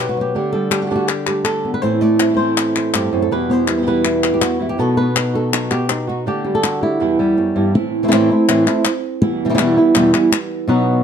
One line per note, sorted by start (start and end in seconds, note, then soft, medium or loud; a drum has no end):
0.00 0.33 B2 medium
0.00 0.16 F#3 medium
0.00 0.34 F#3 soft
0.00 0.34 B3 soft
0.00 0.35 D#4 soft
0.00 0.35 F#4 soft
0.00 0.34 B4 medium
0.09 0.21 F#4 medium
0.17 0.33 F#3 soft
0.17 0.70 G4 medium
0.34 0.71 D3 medium
0.34 1.83 D3 medium
0.34 0.71 A3 medium
0.34 0.72 D4 medium
0.34 0.70 G4 medium
0.53 0.90 G3 medium
0.53 1.09 A4 medium
0.71 0.81 A3 soft
0.71 0.81 D4 soft
0.71 0.82 G4 medium
0.71 0.81 G4 soft
0.71 clap medium
0.81 0.85 D3 soft
0.81 0.85 A3 soft
0.81 0.86 D4 soft
0.81 0.94 F#4 medium
0.81 0.86 G4 soft
0.86 0.89 D3 soft
0.86 0.90 A3 medium
0.86 0.90 D4 soft
0.86 0.90 G4 medium
0.90 1.08 D3 medium
0.90 1.27 G3 soft
0.90 1.08 A3 medium
0.90 1.08 D4 medium
0.90 1.08 G4 medium
0.96 1.07 F#4 medium
1.07 1.64 G4 medium
1.07 muted nylon-string guitar stroke medium
1.07 clap medium
1.27 1.83 G3 soft
1.27 1.45 A3 soft
1.27 1.45 D4 soft
1.27 1.45 G4 soft
1.27 clap medium
1.44 1.82 D3 soft
1.44 1.82 A3 soft
1.44 1.83 D4 soft
1.44 1.83 G4 soft
1.44 1.73 A4 medium
1.44 clap medium
1.65 1.83 B3 soft
1.74 1.82 B4 medium
1.82 2.19 A2 medium
1.82 3.31 A2 medium
1.82 2.19 E3 medium
1.82 2.19 A3 medium
1.82 2.19 C4 medium
1.82 2.18 E4 medium
1.82 2.01 C5 medium
2.01 3.29 A3 medium
2.01 2.36 D5 medium
2.19 2.28 A3 soft
2.19 2.28 C4 soft
2.19 2.29 E4 soft
2.19 3.29 E4 soft
2.19 clap medium
2.29 2.32 E3 soft
2.29 2.33 A3 soft
2.29 2.33 C4 soft
2.29 2.33 E4 soft
2.33 2.37 E3 soft
2.33 2.37 A3 soft
2.33 2.37 C4 soft
2.33 2.38 E4 medium
2.33 2.75 C5 medium
2.38 2.93 A2 medium
2.38 2.93 E3 medium
2.38 2.93 A3 medium
2.38 2.93 C4 medium
2.38 2.93 E4 medium
2.58 clap medium
2.76 3.30 C5 soft
2.76 clap medium
2.94 3.12 G2 soft
2.94 3.12 E3 soft
2.94 3.12 A3 soft
2.94 3.12 C4 soft
2.94 3.11 E4 soft
2.94 3.22 G4 medium
2.94 clap medium
3.12 3.31 F#2 medium
3.12 3.31 A3 soft
3.12 3.31 C4 soft
3.12 3.30 E4 soft
3.22 3.31 A4 medium
3.31 3.67 E2 medium
3.31 4.79 E2 medium
3.31 3.67 B2 medium
3.31 3.68 E3 medium
3.31 3.68 G3 medium
3.31 3.67 B3 medium
3.31 3.67 E4 medium
3.31 3.51 B4 medium
3.50 4.77 B3 medium
3.50 3.87 C5 loud
3.68 3.76 E3 soft
3.68 3.77 G3 soft
3.68 3.77 B3 soft
3.68 3.78 E4 soft
3.68 4.04 E4 soft
3.68 clap medium
3.77 3.81 B2 soft
3.77 3.81 E3 soft
3.77 3.81 G3 soft
3.77 3.82 B3 soft
3.77 3.82 E4 soft
3.82 3.85 B2 soft
3.82 3.86 E3 soft
3.82 3.86 G3 soft
3.82 3.86 B3 soft
3.82 3.86 E4 soft
3.86 4.41 E2 medium
3.86 4.41 B2 medium
3.86 4.40 E3 medium
3.86 4.41 G3 medium
3.86 4.41 B3 medium
3.86 4.42 E4 medium
3.86 4.42 B4 medium
4.05 4.61 E4 soft
4.05 clap medium
4.24 clap medium
4.34 4.41 G4 medium
4.41 4.59 E3 soft
4.41 4.59 G3 soft
4.41 4.59 B3 soft
4.41 4.58 E4 soft
4.41 4.69 F#4 medium
4.41 clap medium
4.59 4.78 E3 soft
4.59 4.78 G3 soft
4.59 4.77 B3 soft
4.59 4.78 E4 soft
4.59 4.77 E4 soft
4.69 4.79 G4 medium
4.78 4.96 B2 medium
4.78 6.25 B2 medium
4.78 4.96 F#3 medium
4.78 4.97 B3 medium
4.78 4.97 D#4 medium
4.78 4.96 F#4 medium
4.78 5.34 A4 medium
4.97 6.25 B3 medium
4.97 5.15 B3 soft
4.97 5.15 D#4 soft
4.97 5.15 F#4 soft
4.97 5.71 B4 medium
5.15 5.90 D#4 soft
5.15 muted nylon-string guitar stroke soft
5.15 clap medium
5.34 5.52 B3 soft
5.34 5.52 D#4 soft
5.34 5.52 F#4 soft
5.34 5.71 A4 medium
5.52 5.70 B2 medium
5.52 5.70 F#3 medium
5.52 5.71 B3 medium
5.52 5.70 D#4 medium
5.52 5.70 F#4 medium
5.52 clap medium
5.71 5.88 B3 soft
5.71 5.88 D#4 soft
5.71 5.89 F#4 soft
5.71 6.08 G4 medium
5.71 clap medium
5.89 6.25 D#4 soft
5.89 muted nylon-string guitar stroke soft
5.89 clap medium
6.07 6.26 B3 soft
6.07 6.26 D#4 soft
6.07 6.25 F#4 soft
6.07 6.27 F#4 medium
6.26 6.44 D3 medium
6.26 7.01 D3 medium
6.26 6.44 A3 medium
6.26 6.45 D4 medium
6.26 6.44 G4 medium
6.26 6.63 G4 medium
6.44 7.00 G3 medium
6.44 6.62 A3 soft
6.44 6.62 D4 soft
6.44 6.63 G4 soft
6.55 6.82 A4 medium
6.63 7.01 F#4 medium
6.63 muted nylon-string guitar stroke soft
6.63 clap medium
6.82 7.00 A3 soft
6.82 7.00 D4 soft
6.82 7.75 E4 medium
6.82 7.00 G4 soft
7.00 7.37 E2 medium
7.00 7.18 E2 medium
7.00 7.18 B2 medium
7.00 7.18 E3 medium
7.00 7.19 G3 medium
7.00 7.72 B3 soft
7.00 7.18 B3 medium
7.00 7.18 E4 medium
7.19 7.36 E3 soft
7.19 7.72 G3 medium
7.19 7.37 G3 soft
7.19 7.37 B3 soft
7.19 7.37 E4 soft
7.37 7.55 F#2 medium
7.37 muted nylon-string guitar stroke soft
7.56 7.74 G2 medium
7.56 7.73 E3 soft
7.56 7.74 G3 soft
7.56 7.74 B3 soft
7.56 7.73 E4 soft
7.74 8.10 A2 medium
7.74 8.10 E3 medium
7.74 8.11 A3 medium
7.74 8.11 C4 medium
7.74 8.11 E4 medium
7.74 muted nylon-string guitar stroke medium
8.03 8.07 E3 medium
8.03 8.07 A3 medium
8.03 8.07 C4 medium
8.03 8.07 E4 medium
8.08 8.29 A2 medium
8.08 8.11 E3 medium
8.08 8.29 E3 soft
8.08 8.12 A3 medium
8.08 8.29 A3 soft
8.08 8.12 C4 medium
8.08 8.12 E4 medium
8.12 8.30 E3 medium
8.12 8.30 A3 medium
8.12 8.29 C4 soft
8.12 8.30 C4 medium
8.12 8.28 E4 soft
8.12 8.30 E4 medium
8.12 clap medium
8.29 8.47 A3 soft
8.29 8.48 A3 medium
8.29 8.48 C4 soft
8.29 8.48 C4 medium
8.29 8.47 E4 soft
8.29 8.48 E4 medium
8.48 8.66 A2 medium
8.48 8.66 E3 medium
8.48 8.66 A3 medium
8.48 8.66 C4 medium
8.48 8.65 E4 medium
8.48 muted nylon-string guitar stroke soft
8.48 clap medium
8.66 8.84 A3 soft
8.66 9.22 A3 soft
8.66 8.84 C4 soft
8.66 9.21 C4 soft
8.66 9.21 E4 soft
8.66 8.84 E4 medium
8.66 clap medium
8.85 muted nylon-string guitar stroke medium
8.85 clap medium
9.21 9.58 E2 medium
9.21 9.58 B2 medium
9.21 9.57 E3 medium
9.21 9.58 G3 medium
9.21 9.58 B3 medium
9.21 9.58 E4 medium
9.21 muted nylon-string guitar stroke medium
9.45 9.48 B2 medium
9.45 9.48 E3 medium
9.45 9.49 G3 medium
9.45 9.49 B3 medium
9.45 9.49 E4 medium
9.49 9.53 B2 medium
9.49 9.54 E3 medium
9.49 9.54 G3 medium
9.49 9.54 B3 medium
9.49 9.54 E4 medium
9.54 9.58 B2 medium
9.54 9.58 E3 medium
9.54 9.76 E3 soft
9.54 9.58 G3 medium
9.54 9.58 B3 medium
9.54 9.58 E4 medium
9.59 9.76 E2 medium
9.59 9.77 B2 medium
9.59 9.76 E3 medium
9.59 9.76 G3 soft
9.59 9.77 G3 medium
9.59 9.77 B3 medium
9.59 9.76 B3 soft
9.59 9.76 E4 medium
9.59 9.75 E4 soft
9.59 clap medium
9.76 9.94 E3 soft
9.76 9.94 G3 soft
9.76 9.95 G3 soft
9.76 9.94 B3 soft
9.76 9.95 B3 medium
9.76 9.94 E4 soft
9.76 9.95 E4 medium
9.95 10.13 E2 medium
9.95 10.13 B2 medium
9.95 10.13 E3 medium
9.95 10.13 G3 medium
9.95 10.13 B3 medium
9.95 10.12 E4 medium
9.95 muted nylon-string guitar stroke medium
9.95 clap medium
10.13 10.31 E3 soft
10.13 10.68 E3 soft
10.13 10.31 G3 soft
10.13 10.69 G3 soft
10.13 10.31 B3 medium
10.13 10.68 B3 soft
10.13 10.31 E4 soft
10.13 10.68 E4 soft
10.13 clap medium
10.32 muted nylon-string guitar stroke medium
10.32 clap medium
10.68 11.04 B2 medium
10.68 11.04 F#3 medium
10.68 11.04 B3 medium
10.68 11.04 D#4 medium
10.68 11.04 F#4 medium